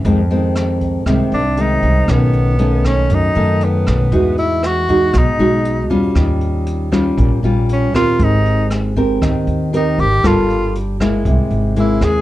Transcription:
0.05 upright bass F2, nylon-string guitar F2 D#3 G#3 C4, kick, closed hi-hat
0.30 nylon-string guitar D#3 G#3 C4, closed hi-hat
0.55 cross-stick, closed hi-hat
0.81 kick, closed hi-hat
1.06 upright bass C2, nylon-string guitar C3 D#3 G#3 C4, kick, cross-stick, closed hi-hat
1.32 upright bass C2, tenor saxophone D4, closed hi-hat
1.57 nylon-string guitar D#3 G#3 C4, closed hi-hat
1.61 tenor saxophone D#4
1.83 upright bass C2, kick, closed hi-hat
2.08 upright bass B1, nylon-string guitar B2 D#3 A3 C#4, tenor saxophone B3, kick, cross-stick, closed hi-hat
2.33 closed hi-hat
2.58 nylon-string guitar D#3 A3 C#4, closed hi-hat
2.84 tenor saxophone C#4, kick, cross-stick, closed hi-hat
3.10 upright bass F#2, nylon-string guitar F#2, kick, closed hi-hat
3.14 tenor saxophone D#4
3.35 upright bass F#2, nylon-string guitar D#3 A3 C#4, closed hi-hat
3.61 tenor saxophone B3, closed hi-hat
3.86 upright bass B1, kick, cross-stick, closed hi-hat
4.12 upright bass E2, nylon-string guitar E3 G#3 D#4 F#4, kick, closed hi-hat
4.38 tenor saxophone E4, closed hi-hat
4.63 tenor saxophone F#4, cross-stick, closed hi-hat
4.88 nylon-string guitar G#3 D#4 F#4, kick, closed hi-hat
5.13 upright bass B1, nylon-string guitar B2, kick, cross-stick, closed hi-hat
5.18 tenor saxophone D#4
5.39 upright bass B1, nylon-string guitar G#3 D#4 F#4, closed hi-hat
5.65 closed hi-hat
5.90 upright bass E2, nylon-string guitar G3 C#4 F4, kick, closed hi-hat
6.15 upright bass D#2, nylon-string guitar D#3, kick, cross-stick, closed hi-hat
6.41 closed hi-hat
6.66 closed hi-hat
6.92 nylon-string guitar G3 C#4 F4, kick, cross-stick, closed hi-hat
7.18 upright bass A#1, nylon-string guitar A#2, kick, closed hi-hat
7.43 upright bass A#1, nylon-string guitar G3 C#4 F4, closed hi-hat
7.69 tenor saxophone C#4, closed hi-hat
7.94 upright bass D#2, nylon-string guitar C4 G4 A#4, tenor saxophone F4, kick, cross-stick, closed hi-hat
8.19 upright bass G#1, nylon-string guitar G#3, kick, closed hi-hat
8.23 tenor saxophone D#4
8.45 closed hi-hat
8.70 cross-stick, closed hi-hat
8.96 nylon-string guitar C4 G4 A#4, kick, closed hi-hat
9.22 upright bass D#2, nylon-string guitar D#3, kick, cross-stick, closed hi-hat
9.47 upright bass D#2, closed hi-hat
9.73 nylon-string guitar C4 G4 A#4, tenor saxophone D#4, closed hi-hat
9.98 upright bass G#1, tenor saxophone G4, kick, closed hi-hat
10.23 upright bass G1, nylon-string guitar G3 A#3 F4 A4, tenor saxophone F4, kick, cross-stick, closed hi-hat
10.50 closed hi-hat
10.75 closed hi-hat
11.00 nylon-string guitar G#3 A#3 E4, kick, cross-stick, closed hi-hat
11.25 upright bass C2, nylon-string guitar C3, kick, closed hi-hat
11.51 upright bass G#1, closed hi-hat
11.76 nylon-string guitar G#3 A#3 E4, tenor saxophone E4, closed hi-hat
12.01 upright bass D#2, tenor saxophone G#4, kick, cross-stick, closed hi-hat

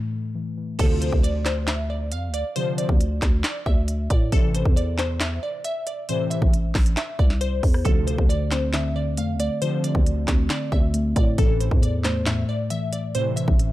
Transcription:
Already playing: synth keys A2 E3 A3
0.13 synth keys A2
0.35 synth keys E3
0.57 synth keys E3
0.79 808-style bass D2, analog polysynth C3 D3 F3, synth pluck A4, kick, closed hi-hat, crash
1.01 synth pluck C5, closed hi-hat
1.12 808-style bass D2, kick
1.23 synth pluck D5, closed hi-hat
1.46 synth pluck C5, snare, clap, closed hi-hat
1.68 synth pluck E5, snare, clap, closed hi-hat
1.90 synth pluck D5
2.12 808-style bass F2, synth pluck F5, closed hi-hat
2.28 808-style bass D2
2.34 synth pluck D5, closed hi-hat
2.56 analog polysynth C3 D3 F3, synth pluck C5, closed hi-hat
2.78 synth pluck D5, closed hi-hat
2.89 808-style bass D2, kick
3.01 closed hi-hat
3.22 808-style bass D2, kick, cross-stick, snare, clap, closed hi-hat
3.44 synth pluck D5, snare, clap, closed hi-hat
3.66 808-style bass D2, synth pluck E5, kick
3.88 closed hi-hat
4.10 808-style bass A2, synth pluck D5, kick, closed hi-hat
4.32 808-style bass A1, analog polysynth A2 C3 E3, synth pluck A4, kick, closed hi-hat
4.55 synth pluck C5, closed hi-hat
4.65 808-style bass E2, kick
4.76 synth pluck D5, closed hi-hat
4.98 synth pluck C5, snare, clap, closed hi-hat
5.20 synth pluck E5, snare, clap, closed hi-hat
5.43 synth pluck D5
5.64 synth pluck E5, closed hi-hat
5.87 synth pluck D5, closed hi-hat
6.09 analog polysynth A2 C3 E3, synth pluck C5, closed hi-hat
6.30 synth pluck E5, closed hi-hat
6.42 808-style bass A1, kick
6.54 closed hi-hat
6.75 808-style bass A1, kick, cross-stick, snare, clap, closed hi-hat, open hi-hat
6.86 closed hi-hat
6.97 synth pluck E5, snare, clap, closed hi-hat
7.19 808-style bass C2, synth pluck D5, kick
7.30 snare
7.41 synth pluck C5, closed hi-hat
7.63 808-style bass E2, kick, open hi-hat
7.74 cross-stick
7.85 808-style bass D2, analog polysynth C3 D3 F3, synth keys D3, synth pluck A4, kick, closed hi-hat
8.07 synth keys D3, synth pluck C5, closed hi-hat
8.18 808-style bass D2, kick
8.29 synth keys D3, synth pluck D5, closed hi-hat
8.51 synth keys C4, synth pluck C5, snare, clap, closed hi-hat
8.73 synth keys D3, synth pluck E5, snare, clap, closed hi-hat
8.96 synth keys D3, synth pluck D5
9.17 808-style bass F2, synth keys A3, synth pluck F5, closed hi-hat
9.34 808-style bass D2
9.40 synth keys A3, synth pluck D5, closed hi-hat
9.62 analog polysynth C3 D3 F3, synth keys D3, synth pluck C5, closed hi-hat
9.84 synth keys D3, synth pluck D5, closed hi-hat
9.95 808-style bass D2, kick
10.06 synth keys D3, closed hi-hat
10.28 808-style bass D2, synth keys C4, kick, cross-stick, snare, clap, closed hi-hat
10.50 synth keys D3, synth pluck D5, snare, clap, closed hi-hat
10.72 808-style bass D2, synth keys D3, synth pluck E5, kick
10.94 synth keys A3, closed hi-hat
11.16 808-style bass A2, synth keys A3, synth pluck D5, kick, closed hi-hat
11.38 808-style bass A1, analog polysynth A2 C3 E3, synth keys A2, synth pluck A4, kick, closed hi-hat
11.60 synth keys A2, synth pluck C5, closed hi-hat
11.71 808-style bass E2, kick
11.82 synth keys A2, synth pluck D5, closed hi-hat
12.04 synth keys A3, synth pluck C5, snare, clap, closed hi-hat
12.26 synth keys A2, synth pluck E5, snare, clap, closed hi-hat
12.48 synth keys A2, synth pluck D5
12.70 synth keys E3, synth pluck E5, closed hi-hat
12.93 synth keys E3, synth pluck D5, closed hi-hat
13.15 analog polysynth A2 C3 E3, synth keys A2, synth pluck C5, closed hi-hat
13.36 synth keys A2, synth pluck E5, closed hi-hat
13.48 808-style bass A1, kick
13.59 synth keys A2, closed hi-hat

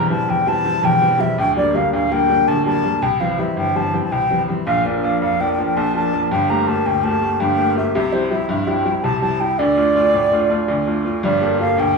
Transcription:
Already playing: upright piano E1
0.10 upright piano E3 G3 C4, flute A5
0.29 upright piano E2, flute G5
0.46 upright piano E3 G3 C4, flute A5
0.65 upright piano E3 G3 C4
0.83 upright piano E1 E2, flute G5
1.01 upright piano E3 G3 C4
1.19 upright piano E3 G3 C4, flute E5
1.38 upright piano D1 D2, flute G5
1.57 upright piano D3 G3 A#3, flute D5
1.74 upright piano D3 G3 A#3, flute F5
1.93 upright piano D2, flute F5
2.11 upright piano D3 G3 A#3, flute G5
2.29 upright piano D3 G3 A#3
2.48 upright piano D1 D2, flute A5
2.65 upright piano D3 G3 A#3, flute A5
2.84 upright piano D3 G3 A#3
3.02 upright piano C2, flute G5
3.20 upright piano E3 G3 C4, flute F5
3.38 upright piano E3 G3 C4, flute E5
3.57 upright piano G1, flute G5
3.75 upright piano E3 G3 C4, flute A5
3.93 upright piano E3 G3 C4
4.05 flute A5
4.12 upright piano C2, flute G5
4.30 upright piano E3 G3 C4
4.48 upright piano E3 G3 C4
4.67 upright piano A#1 A#2, flute F5
4.84 upright piano F3 A#3 D4
5.03 upright piano F3 A#3 D4, flute F5
5.22 upright piano F2, flute F5
5.40 upright piano F3 A#3 D4, flute G5
5.52 flute G5
5.58 upright piano F3 A#3 D4
5.65 flute G5
5.77 upright piano A#1 A#2, flute A5
5.94 upright piano F3 A#3 D4, flute A5
6.13 upright piano F3 A#3 D4
6.31 upright piano G1 G2, flute G5
6.50 upright piano A3 A#3 G4, flute A#5
6.67 upright piano A3 A#3 G4, flute A5
6.86 upright piano D2, flute G5
7.04 upright piano A3 A#3 G4, flute A5
7.22 upright piano A3 A#3 G4
7.40 upright piano G1 G2, flute G5
7.58 upright piano A3 A#3 G4
7.76 upright piano A3 A#3 G4, flute E5
7.95 upright piano C2 C3, flute E5
8.13 upright piano G3 C4 E4, flute C5
8.31 upright piano G3 C4 E4, flute E5
8.49 upright piano G2, flute E5
8.67 upright piano G3 C4 E4, flute G5
8.85 upright piano G3 C4 E4
9.04 upright piano C2 C3, flute A5
9.22 upright piano G3 C4 E4, flute A5
9.40 upright piano G3 C4 E4, flute G5
9.59 upright piano D2 D3, flute D5
9.77 upright piano A3 D4 F4
9.95 upright piano A3 D4 F4
10.14 upright piano A2
10.32 upright piano A3 D4 F4
10.50 upright piano A3 D4 F4
10.68 upright piano D2 D3
10.87 upright piano A3 D4 F4
11.05 upright piano A3 D4 F4
11.23 upright piano G1 G2, flute D5
11.41 upright piano A#3 G4 A4
11.59 upright piano A#3 G4 A4, flute F5
11.78 upright piano D2, flute G5

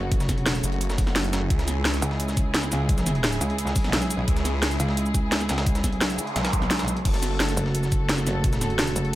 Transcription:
Already playing: wobble bass F#1, string section C#3 F#3 A3 F#4
0.12 kick, closed hi-hat
0.20 wobble bass F1, snare, closed hi-hat, shaker
0.29 kick, snare, closed hi-hat, shaker
0.38 closed hi-hat
0.46 wobble bass E1, snare, closed hi-hat
0.55 closed hi-hat, shaker
0.64 detuned saw bass F#1, closed hi-hat, shaker
0.72 closed hi-hat
0.81 closed hi-hat
0.90 snare, shaker
0.98 kick, closed hi-hat, open hi-hat, shaker
1.07 snare
1.16 detuned saw bass F#1, snare, closed hi-hat
1.24 closed hi-hat, shaker
1.33 snare, closed hi-hat, shaker
1.50 detuned saw bass C#2, string section G#3 E4 G#4, kick, closed hi-hat
1.59 snare, closed hi-hat
1.68 snare, closed hi-hat, shaker
1.85 snare, closed hi-hat
1.94 closed hi-hat, shaker
2.02 wobble bass C#2, closed hi-hat, shaker
2.11 snare
2.20 closed hi-hat
2.28 snare, shaker
2.37 kick, closed hi-hat, shaker
2.54 snare, closed hi-hat
2.63 snare, closed hi-hat, shaker
2.72 snare, closed hi-hat, shaker
2.89 kick, closed hi-hat
2.98 snare, closed hi-hat, shaker
3.06 snare, closed hi-hat, shaker
3.15 closed hi-hat
3.24 snare, closed hi-hat
3.32 closed hi-hat, shaker
3.41 wobble bass C#2, closed hi-hat, shaker
3.50 closed hi-hat
3.58 closed hi-hat
3.67 snare, shaker
3.76 kick, closed hi-hat, open hi-hat, shaker
3.84 snare
3.93 wobble bass B1, snare, closed hi-hat
4.02 closed hi-hat, shaker
4.10 closed hi-hat, shaker
4.28 detuned saw bass C#2, kick, closed hi-hat
4.36 snare, closed hi-hat
4.45 snare, closed hi-hat, shaker
4.62 snare, closed hi-hat
4.71 closed hi-hat, shaker
4.80 wobble bass C#2, closed hi-hat, shaker
4.89 snare
4.97 closed hi-hat
5.06 shaker
5.15 kick, closed hi-hat, shaker
5.32 snare, closed hi-hat
5.41 snare, closed hi-hat, shaker
5.49 snare, closed hi-hat, shaker
5.58 snare, closed hi-hat
5.67 kick, closed hi-hat, noise sweep
5.75 wobble bass C2, snare, closed hi-hat, shaker
5.84 kick, snare, closed hi-hat, shaker
5.93 closed hi-hat
6.01 wobble bass B1, snare, closed hi-hat
6.10 closed hi-hat, shaker
6.19 closed hi-hat, shaker
6.27 closed hi-hat
6.36 wobble bass B1, snare, closed hi-hat
6.45 snare, closed hi-hat, shaker
6.53 kick, closed hi-hat, shaker
6.62 snare
6.71 snare, closed hi-hat
6.79 snare, closed hi-hat, shaker
6.88 closed hi-hat, shaker
6.97 closed hi-hat
7.05 detuned saw bass F#1, string section C#3 A3 F#4 A4, kick, closed hi-hat, crash
7.14 snare, closed hi-hat
7.23 snare, closed hi-hat, shaker
7.40 snare, closed hi-hat
7.49 closed hi-hat, shaker
7.57 wobble bass F#1, closed hi-hat, shaker
7.66 snare
7.75 closed hi-hat
7.83 snare, shaker
7.92 kick, closed hi-hat, shaker
8.09 snare, closed hi-hat
8.18 snare, closed hi-hat, shaker
8.27 snare, closed hi-hat, shaker
8.44 kick, closed hi-hat
8.53 snare, closed hi-hat, shaker
8.61 snare, closed hi-hat, shaker
8.70 closed hi-hat
8.79 snare, closed hi-hat
8.87 closed hi-hat, shaker
8.96 wobble bass F#1, closed hi-hat, shaker
9.05 closed hi-hat

